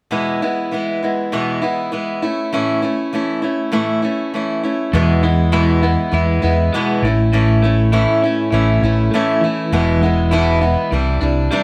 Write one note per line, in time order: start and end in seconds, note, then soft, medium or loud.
0.11 0.41 E2 medium
0.11 0.41 B2 medium
0.11 0.41 E3 medium
0.11 0.42 G#3 medium
0.11 0.41 B3 medium
0.11 0.41 E4 medium
0.42 0.70 E3 soft
0.42 0.71 G#3 soft
0.42 0.72 B3 soft
0.42 0.72 E4 medium
0.71 1.02 E3 medium
0.71 1.02 G#3 soft
0.71 1.03 B3 soft
0.71 1.01 E4 medium
1.03 1.32 E3 soft
1.03 1.32 G#3 soft
1.03 1.32 B3 soft
1.03 1.32 E4 soft
1.32 1.62 E2 medium
1.32 1.62 B2 medium
1.32 1.63 E3 medium
1.32 1.62 G#3 medium
1.32 1.61 B3 medium
1.32 1.60 E4 medium
1.62 1.91 E3 soft
1.62 1.92 G#3 soft
1.62 1.92 B3 soft
1.62 1.92 E4 soft
1.92 2.22 E3 medium
1.92 2.23 G#3 medium
1.92 2.23 B3 medium
1.92 2.21 E4 medium
2.22 2.52 A3 soft
2.22 2.52 C#4 soft
2.22 2.52 E4 medium
2.53 2.83 A2 medium
2.53 2.83 E3 medium
2.53 2.83 A3 medium
2.53 2.82 C#4 medium
2.53 2.81 E4 medium
2.82 3.12 A3 soft
2.82 3.13 C#4 soft
2.82 3.12 E4 soft
3.13 3.43 E3 medium
3.13 3.43 A3 medium
3.13 3.42 C#4 medium
3.13 3.41 E4 medium
3.42 3.71 A3 soft
3.42 3.72 C#4 soft
3.42 3.72 E4 soft
3.72 4.02 A2 medium
3.72 4.03 E3 medium
3.72 4.03 A3 medium
3.72 4.03 C#4 medium
3.72 4.01 E4 medium
4.02 4.33 A3 soft
4.02 4.34 C#4 soft
4.02 4.33 E4 medium
4.34 4.63 E3 medium
4.34 4.64 A3 medium
4.34 4.63 C#4 medium
4.34 4.62 E4 medium
4.63 4.94 A3 soft
4.63 4.94 C#4 soft
4.63 4.93 E4 medium
4.93 5.96 E2 medium
4.93 5.23 E2 medium
4.93 5.23 B2 medium
4.93 5.24 E3 medium
4.93 5.23 G#3 medium
4.93 5.22 B3 medium
4.93 5.22 E4 medium
5.23 5.52 E3 soft
5.23 5.51 G#3 soft
5.23 5.52 B3 soft
5.23 5.52 E4 medium
5.52 5.83 E2 medium
5.52 5.83 B2 medium
5.52 5.83 E3 medium
5.52 5.82 G#3 medium
5.52 5.82 B3 medium
5.52 5.81 E4 medium
5.82 6.10 E3 soft
5.82 6.12 G#3 soft
5.82 6.12 B3 soft
5.82 6.13 E4 soft
6.12 6.38 E2 medium
6.12 6.42 E3 medium
6.12 6.42 G#3 medium
6.12 6.42 B3 medium
6.12 6.41 E4 medium
6.42 6.69 E2 medium
6.42 6.73 E3 soft
6.42 6.73 G#3 soft
6.42 6.73 B3 medium
6.42 6.73 E4 medium
6.74 7.04 E2 medium
6.74 7.04 B2 medium
6.74 7.04 E3 medium
6.74 7.04 G#3 medium
6.74 7.04 B3 medium
6.74 7.04 E4 medium
7.02 8.05 A1 medium
7.02 7.31 A2 medium
7.02 7.33 C#4 soft
7.02 7.33 E4 medium
7.07 7.32 A3 soft
7.33 7.63 A2 medium
7.33 7.63 E3 medium
7.33 7.63 A3 medium
7.33 7.64 C#4 medium
7.33 7.62 E4 medium
7.64 7.92 A3 soft
7.64 7.92 C#4 medium
7.64 7.92 E4 medium
7.93 8.23 A2 medium
7.93 8.23 E3 medium
7.93 8.23 A3 medium
7.93 8.23 C#4 medium
7.93 8.22 E4 medium
8.23 8.52 A3 soft
8.23 8.52 C#4 soft
8.23 8.53 E4 soft
8.52 8.78 A1 medium
8.52 8.83 E3 medium
8.52 8.83 A3 medium
8.52 8.83 C#4 medium
8.52 8.82 E4 medium
8.82 9.08 A1 medium
8.82 9.13 A3 soft
8.82 9.14 C#4 soft
8.82 9.13 E4 medium
9.13 9.43 A2 medium
9.13 9.43 E3 medium
9.13 9.44 A3 medium
9.13 9.43 C#4 medium
9.13 9.43 E4 medium
9.41 9.72 E3 medium
9.41 9.73 A3 soft
9.41 9.73 C#4 soft
9.41 9.73 E4 medium
9.72 10.75 E1 medium
9.72 10.03 E2 medium
9.72 10.03 B2 medium
9.72 10.03 E3 medium
9.72 10.03 G#3 medium
9.72 10.02 B3 medium
9.72 10.01 E4 medium
10.03 10.31 E3 soft
10.03 10.31 G#3 soft
10.03 10.31 B3 soft
10.03 10.32 E4 medium
10.31 10.62 E2 medium
10.31 10.62 B2 medium
10.31 10.62 E3 medium
10.31 10.62 G#3 medium
10.31 10.61 B3 medium
10.31 10.60 E4 medium
10.61 10.91 E3 soft
10.61 10.93 G#3 soft
10.61 10.93 B3 soft
10.61 10.92 E4 soft
10.91 11.18 C2 medium
10.91 11.63 C3 medium
10.91 11.22 E3 medium
10.91 11.22 G3 medium
10.91 11.21 D4 medium
10.91 11.20 E4 medium
11.21 11.48 C2 medium
11.21 11.51 G3 soft
11.21 11.51 D4 soft
11.21 11.52 E4 medium
11.51 11.63 C3 medium
11.51 11.63 E3 medium
11.51 11.63 G3 medium
11.51 11.63 D4 medium
11.51 11.63 E4 medium